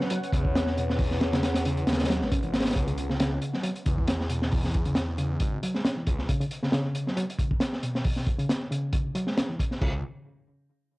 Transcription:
0.00 0.10 F#3 medium
0.00 2.72 C#4 medium
0.00 2.72 B4 medium
0.00 2.72 C#5 medium
0.00 2.74 F#5 medium
0.00 snare soft
0.10 0.18 F#3 medium
0.10 closed hi-hat medium
0.23 closed hi-hat soft
0.32 1.84 E2 medium
0.32 0.44 C#3 medium
0.32 kick loud
0.32 closed hi-hat medium
0.45 kick medium
0.55 snare loud
0.55 closed hi-hat medium
0.66 snare medium
0.77 1.20 B2 medium
0.77 closed hi-hat medium
0.90 snare soft
0.99 kick loud
0.99 open hi-hat medium
1.11 snare soft
1.21 snare loud
1.21 closed hi-hat medium
1.33 1.42 C#3 loud
1.33 snare loud
1.33 closed hi-hat medium
1.43 snare loud
1.43 closed hi-hat medium
1.54 snare loud
1.54 closed hi-hat medium
1.65 2.08 C#3 loud
1.65 closed hi-hat medium
1.77 closed hi-hat soft
1.87 2.23 D#2 loud
1.87 snare medium
1.87 closed hi-hat medium
1.93 snare medium
1.93 closed hi-hat medium
1.99 snare medium
1.99 closed hi-hat medium
2.04 snare medium
2.04 closed hi-hat medium
2.09 2.20 F#3 loud
2.09 snare medium
2.09 closed hi-hat medium
2.21 2.72 G#1 medium
2.21 2.28 G#3 medium
2.21 snare soft
2.32 2.39 C#4 medium
2.32 kick loud
2.32 closed hi-hat medium
2.43 2.53 E3 medium
2.43 closed hi-hat soft
2.53 snare medium
2.53 closed hi-hat medium
2.60 snare medium
2.60 closed hi-hat medium
2.65 snare medium
2.65 closed hi-hat medium
2.71 snare medium
2.71 closed hi-hat medium
2.75 3.38 C#2 medium
2.75 2.86 C#3 loud
2.75 kick loud
2.75 closed hi-hat medium
2.87 2.91 C#3 medium
2.87 closed hi-hat soft
2.98 closed hi-hat medium
3.10 3.16 C#3 loud
3.10 snare soft
3.20 3.52 C#3 loud
3.20 snare loud
3.20 closed hi-hat medium
3.42 closed hi-hat medium
3.53 3.62 F#3 medium
3.53 snare soft
3.63 3.71 F#3 medium
3.63 closed hi-hat medium
3.76 closed hi-hat soft
3.85 5.37 E2 medium
3.85 3.96 C#3 medium
3.85 kick medium
3.85 closed hi-hat medium
3.98 kick medium
4.07 snare loud
4.07 closed hi-hat medium
4.20 snare medium
4.29 4.73 B2 medium
4.29 closed hi-hat medium
4.42 snare soft
4.52 kick loud
4.52 open hi-hat medium
4.64 snare soft
4.74 kick medium
4.74 closed hi-hat medium
4.85 4.95 C#3 loud
4.85 closed hi-hat soft
4.95 snare loud
4.95 closed hi-hat medium
5.18 5.61 C#3 loud
5.18 closed hi-hat medium
5.40 5.58 G#1 medium
5.40 kick loud
5.40 closed hi-hat medium
5.63 5.73 F#3 loud
5.63 closed hi-hat medium
5.74 5.80 G#3 medium
5.74 snare soft
5.85 5.92 C#4 medium
5.85 snare loud
5.85 closed hi-hat medium
5.97 6.06 E3 medium
6.07 6.25 C#2 medium
6.07 kick medium
6.07 closed hi-hat medium
6.18 snare soft
6.29 6.39 C#3 loud
6.29 kick loud
6.29 closed hi-hat medium
6.41 6.44 C#3 medium
6.41 closed hi-hat soft
6.51 closed hi-hat medium
6.63 6.69 C#3 loud
6.63 snare soft
6.72 7.06 C#3 loud
6.72 snare loud
6.72 closed hi-hat medium
6.95 closed hi-hat medium
7.07 7.15 F#3 medium
7.07 snare soft
7.17 7.24 F#3 loud
7.17 closed hi-hat medium
7.30 closed hi-hat soft
7.39 7.50 C#3 medium
7.39 kick medium
7.39 closed hi-hat medium
7.51 kick medium
7.60 snare loud
7.60 closed hi-hat medium
7.73 snare soft
7.83 8.26 B2 medium
7.83 closed hi-hat medium
7.95 snare soft
8.04 kick loud
8.04 open hi-hat medium
8.16 snare soft
8.27 kick medium
8.27 closed hi-hat medium
8.39 8.48 C#3 loud
8.39 closed hi-hat soft
8.49 snare loud
8.49 closed hi-hat medium
8.71 9.14 C#3 loud
8.71 closed hi-hat medium
8.93 kick loud
8.93 closed hi-hat medium
9.15 9.26 F#3 loud
9.15 closed hi-hat medium
9.27 9.33 G#3 medium
9.27 snare soft
9.37 9.44 C#4 medium
9.37 snare loud
9.37 closed hi-hat medium
9.49 9.58 E3 medium
9.60 kick medium
9.60 closed hi-hat medium
9.71 snare soft
9.82 10.02 C#2 medium
9.82 10.02 C#3 medium
9.82 kick loud
9.82 crash medium

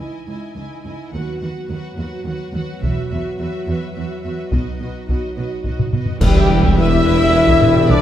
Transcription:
0.00 1.09 E3 soft
0.00 1.09 D#4 soft
0.00 0.27 E4 soft
0.00 0.28 D#5 soft
0.00 0.27 G#5 soft
0.28 0.36 C#2 soft
0.28 0.56 E4 soft
0.28 0.56 D#5 soft
0.28 0.53 G#5 soft
0.54 0.64 C#2 soft
0.54 0.84 E4 soft
0.54 0.85 D#5 soft
0.54 0.81 G#5 soft
0.82 0.93 C#2 soft
0.82 1.13 E4 soft
0.82 1.11 G#5 soft
0.86 1.13 D#5 soft
1.11 1.39 D#2 soft
1.11 1.22 D#2 soft
1.11 4.52 F#3 soft
1.11 4.52 B3 soft
1.11 1.41 F#4 soft
1.11 1.40 B4 soft
1.11 1.39 F#5 soft
1.40 1.50 D#2 soft
1.40 1.69 F#4 soft
1.40 1.68 B4 soft
1.40 1.68 F#5 soft
1.69 1.77 D#2 soft
1.69 1.96 F#4 soft
1.69 1.97 B4 soft
1.69 1.96 F#5 soft
1.97 2.05 D#2 soft
1.97 2.25 F#4 soft
1.97 2.26 B4 soft
1.97 2.25 F#5 soft
2.25 2.33 D#2 soft
2.25 2.54 F#4 soft
2.25 2.55 B4 soft
2.25 2.53 F#5 soft
2.54 2.62 D#2 soft
2.54 2.81 F#4 soft
2.54 2.82 B4 soft
2.54 2.82 F#5 soft
2.82 3.09 E1 medium
2.82 2.91 E2 medium
2.82 3.09 F#4 soft
2.82 3.10 B4 medium
2.82 3.09 E5 soft
2.82 taiko medium
3.10 3.19 E2 soft
3.10 3.38 F#4 soft
3.10 3.39 B4 soft
3.10 3.37 E5 soft
3.39 3.47 E2 medium
3.39 3.66 F#4 soft
3.39 3.68 B4 soft
3.39 3.66 E5 soft
3.67 3.75 E2 medium
3.67 3.94 F#4 soft
3.67 3.96 B4 soft
3.67 3.93 E5 soft
3.94 4.04 E2 soft
3.94 4.22 F#4 soft
3.94 4.24 B4 soft
3.94 4.21 E5 soft
4.22 4.32 E2 soft
4.22 4.50 F#4 soft
4.22 4.53 B4 soft
4.22 4.51 E5 soft
4.51 4.78 B1 soft
4.51 4.60 B2 soft
4.51 5.91 F#3 soft
4.51 5.91 D#4 soft
4.51 4.79 F#4 soft
4.51 4.80 B4 soft
4.51 4.77 D#5 soft
4.51 taiko medium
4.79 4.88 B2 soft
4.79 5.07 F#4 soft
4.79 5.09 B4 soft
4.79 5.07 D#5 soft
5.08 5.17 B2 soft
5.08 5.34 F#4 soft
5.08 5.36 B4 soft
5.08 5.36 D#5 soft
5.08 taiko medium
5.36 5.45 B2 soft
5.36 5.62 F#4 soft
5.36 5.64 B4 soft
5.36 5.64 D#5 soft
5.63 5.74 B2 soft
5.63 5.91 F#4 soft
5.63 5.92 B4 soft
5.63 5.91 D#5 soft
5.63 taiko medium
5.79 taiko low-mid medium
5.92 6.02 B2 soft
5.92 6.20 F#4 soft
5.92 6.21 B4 soft
5.92 6.20 D#5 soft
5.92 taiko low-mid medium
6.06 taiko low medium
6.19 8.02 E1 medium
6.19 8.02 E2 medium
6.19 8.02 G3 medium
6.19 8.02 E4 medium
6.19 6.34 E4 medium
6.19 6.72 G4 medium
6.19 6.73 G4 medium
6.19 6.34 B4 medium
6.19 6.74 G5 medium
6.19 concert bass drum medium
6.19 taiko loud
6.19 crash medium
6.19 sub drop medium
6.23 6.75 G3 loud
6.35 6.49 G4 medium
6.35 6.49 E5 medium
6.49 6.63 E4 medium
6.49 6.63 B4 medium
6.63 6.77 G4 medium
6.63 6.78 E5 medium
6.63 taiko medium
6.77 6.90 E4 medium
6.77 7.91 E4 loud
6.77 6.90 B4 medium
6.77 7.88 E5 loud
6.77 7.91 E5 loud
6.77 7.92 E6 loud
6.90 7.05 G4 medium
6.90 7.05 E5 medium
7.04 7.19 E4 medium
7.04 7.19 B4 medium
7.17 7.33 G4 medium
7.17 7.33 E5 medium
7.32 7.46 E4 medium
7.32 7.46 B4 medium
7.47 7.62 G4 medium
7.47 7.62 E5 medium
7.47 taiko medium
7.62 7.76 E4 medium
7.62 7.76 B4 medium
7.62 taiko low-mid medium
7.74 7.89 G4 medium
7.74 7.89 E5 medium
7.74 taiko low-mid medium
7.89 8.02 D4 loud
7.89 8.02 E4 medium
7.89 8.02 B4 medium
7.89 8.02 D5 loud
7.89 8.02 D6 medium
7.89 taiko loud

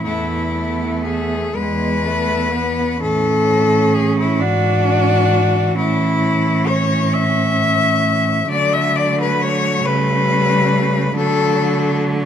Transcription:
0.04 1.37 E2 soft
0.04 0.55 A3 soft
0.04 0.53 B3 soft
0.04 1.03 E4 medium
0.54 1.53 A3 soft
0.54 1.52 B3 soft
1.04 1.58 G#4 medium
1.55 2.84 E2 soft
1.55 2.06 G#3 medium
1.55 2.03 B3 soft
1.55 3.01 B4 medium
2.04 2.55 A3 soft
2.04 2.99 B3 soft
2.54 3.01 B3 soft
3.01 4.41 A2 medium
3.01 8.46 E3 medium
3.01 4.41 C#4 medium
3.01 3.96 A4 medium
3.94 4.16 G#4 medium
4.19 4.43 E4 medium
4.39 5.75 G#2 medium
4.39 5.77 D4 medium
4.39 5.77 F#4 medium
5.75 8.45 A2 medium
5.75 8.49 C#4 soft
5.75 6.69 E4 medium
6.67 7.14 C#5 medium
7.13 8.50 E5 medium
8.49 9.82 D3 medium
8.49 9.86 F#3 medium
8.49 12.25 A3 medium
8.49 8.75 D5 medium
8.73 8.97 E5 medium
8.96 9.18 D5 medium
9.21 9.43 B4 medium
9.42 9.87 C#5 medium
9.85 11.13 C#3 medium
9.85 11.16 G3 medium
9.85 11.16 B4 medium
11.16 12.25 D3 medium
11.16 12.25 F#3 medium
11.16 12.01 A4 medium

